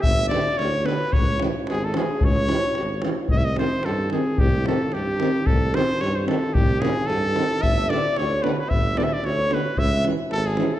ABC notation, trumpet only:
X:1
M:2/4
L:1/16
Q:"Swing 16ths" 1/4=111
K:none
V:1 name="Trumpet"
e2 d2 ^c2 B2 | ^c2 z2 ^G A G2 | ^c6 z2 | _e/2 =e/2 _e c2 A2 ^G2 |
G2 A2 G4 | A2 c2 ^c =c A2 | G2 ^G2 A4 | e2 d2 ^c2 B/2 B/2 B |
e2 d/2 e/2 d ^c2 B2 | e2 z2 A ^G2 A |]